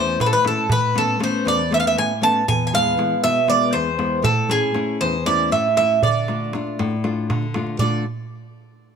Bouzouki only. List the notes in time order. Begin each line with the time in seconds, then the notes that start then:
Already playing: C5
0.21 B4
0.26 A4
0.33 B4
0.47 A4
0.72 B4
0.98 A4
1.24 C5
1.48 D5
1.74 E5
1.80 F5
1.87 E5
1.98 G#5
2.23 A5
2.48 G#5
2.67 G#5
2.75 F5
3.24 E5
3.50 D5
3.73 C5
4.24 A4
4.51 G#4
5.01 C5
5.26 D5
5.52 E5
5.77 E5
6.03 D5
7.79 D5